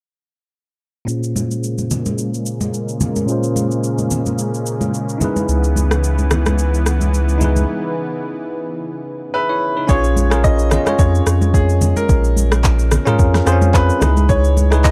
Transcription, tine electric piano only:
1.05 3.23 A#2 medium
1.05 3.24 C#4 medium
1.05 3.24 F4 medium
1.10 3.25 G#4 medium
1.10 3.26 C5 medium
3.25 5.16 A#2 medium
3.25 5.16 C#4 medium
3.25 5.17 F4 medium
3.30 5.18 G#4 medium
3.30 5.19 C5 medium
5.18 7.36 D#4 medium
5.18 7.37 E4 medium
5.22 7.38 G#4 medium
5.22 7.39 B4 medium
7.38 9.28 D#4 medium
7.38 9.30 E4 medium
7.42 9.31 G#4 medium
7.42 9.32 B4 medium
9.34 9.49 G#4 medium
9.34 9.48 E5 medium
9.49 9.76 E4 medium
9.49 9.75 C#5 medium
9.77 10.03 D#4 medium
9.77 10.03 B4 medium
9.87 10.22 C#4 medium
9.87 10.22 F4 medium
9.87 10.23 G#4 medium
9.87 10.23 C#5 loud
10.30 10.63 C#4 medium
10.30 10.64 F4 medium
10.30 10.64 G#4 medium
10.30 10.65 A#4 medium
10.70 10.83 C#4 medium
10.70 10.83 F4 medium
10.70 10.84 G#4 medium
10.70 10.85 D#5 medium
10.85 11.73 C#4 medium
10.85 11.74 F4 medium
10.85 11.75 G#4 medium
10.85 11.75 C#5 medium
13.05 13.39 C#4 medium
13.05 13.39 F4 medium
13.05 13.40 G#4 medium
13.05 13.40 A#4 loud
13.45 13.53 C4 medium
13.45 13.92 F4 medium
13.45 13.92 G#4 medium
13.45 13.93 C5 loud
13.52 13.94 C#4 medium
14.00 14.56 D#4 medium
14.00 14.57 E4 medium
14.00 14.57 G#4 medium
14.00 14.58 B4 medium
14.70 14.91 D#4 medium
14.70 14.91 E4 medium
14.70 14.91 G#4 medium
14.70 14.91 B4 medium

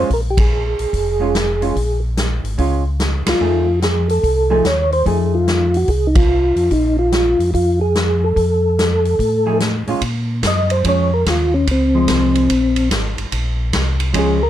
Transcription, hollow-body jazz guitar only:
1.20 1.33 G#3 medium
1.20 1.33 C#4 medium
1.20 1.33 F4 medium
1.61 1.74 G#3 medium
1.61 1.75 C#4 medium
1.61 1.75 F4 medium
2.58 2.82 G#3 medium
2.58 2.83 C#4 medium
2.58 2.83 F4 medium
3.40 3.65 F3 medium
3.40 3.65 A3 medium
3.40 3.65 D#4 medium
3.40 3.66 G#4 medium
4.50 4.63 F3 medium
4.50 4.63 A3 medium
4.50 4.63 D#4 medium
4.50 4.64 G#4 medium
5.05 5.69 F3 medium
5.05 5.69 A3 medium
5.05 5.69 D#4 medium
5.05 5.69 G#4 medium
9.46 9.59 F3 medium
9.46 9.60 A3 medium
9.46 9.59 D#4 medium
9.46 9.60 G#4 medium
9.88 10.01 G#3 medium
9.88 10.01 C#4 medium
9.88 10.01 F4 medium
10.85 11.09 F3 medium
10.85 11.09 G#3 medium
10.85 11.10 C#4 medium
11.95 12.47 F3 medium
11.95 12.47 G#3 medium
14.13 14.38 F3 medium
14.13 14.39 G#3 medium
14.13 14.39 C#4 medium

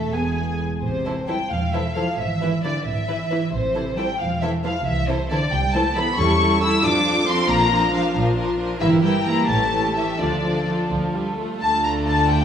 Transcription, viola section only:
0.00 0.12 A3 soft
0.12 0.62 B3 soft
1.06 1.13 E3 soft
1.06 1.13 E4 soft
1.28 1.36 E3 soft
1.28 1.35 E4 soft
1.73 1.81 E3 soft
1.73 1.81 E4 soft
1.96 2.03 E3 soft
1.96 2.03 E4 soft
2.42 2.50 E3 soft
2.42 2.49 E4 soft
2.65 2.72 E3 soft
2.65 2.72 E4 soft
3.09 3.16 E3 soft
3.09 3.16 E4 soft
3.31 3.38 E3 soft
3.31 3.38 E4 soft
3.75 3.82 E3 soft
3.75 3.82 E4 soft
3.97 4.04 E3 soft
3.97 4.04 E4 soft
4.42 4.49 E3 soft
4.42 4.49 E4 soft
4.64 4.71 E3 soft
4.64 4.71 E4 soft
5.09 5.16 E3 soft
5.09 5.16 E4 soft
5.31 5.38 E3 soft
5.31 5.38 E4 soft
5.74 5.82 E3 soft
5.74 5.81 E4 soft
5.96 6.03 E3 soft
5.96 6.03 E4 soft
6.18 6.39 G3 soft
6.18 6.39 E4 medium
6.40 6.62 G3 soft
6.40 6.62 E4 soft
6.63 6.84 G3 soft
6.63 6.84 E4 soft
6.86 7.05 F3 medium
6.86 7.05 D4 soft
7.06 7.26 F3 soft
7.06 7.27 D4 soft
7.28 7.49 F3 soft
7.28 7.49 D4 soft
7.50 7.71 F3 medium
7.50 7.71 D4 soft
7.72 7.92 F3 soft
7.72 7.92 D4 soft
7.93 8.14 F3 soft
7.93 8.14 D4 soft
8.15 8.36 F3 medium
8.15 8.36 D4 medium
8.37 8.58 F3 soft
8.37 8.58 D4 soft
8.59 8.81 F3 soft
8.59 8.80 D4 soft
8.80 9.02 E3 medium
8.80 9.02 E4 medium
9.03 9.25 E3 soft
9.03 9.25 E4 soft
9.27 9.48 E3 soft
9.27 9.49 E4 soft
9.49 9.71 E3 soft
9.49 9.72 C#4 soft
9.73 9.95 E3 soft
9.73 9.95 C#4 soft
9.96 10.19 E3 soft
9.96 10.19 C#4 soft
10.20 10.42 F3 soft
10.20 10.43 D4 soft
10.44 10.66 F3 soft
10.44 10.67 D4 soft
10.68 10.89 F3 soft
10.68 10.90 D4 soft
10.91 11.13 F3 soft
11.14 11.38 G3 soft
11.38 11.60 A3 soft
11.61 12.45 A3 medium
11.61 12.45 D4 soft

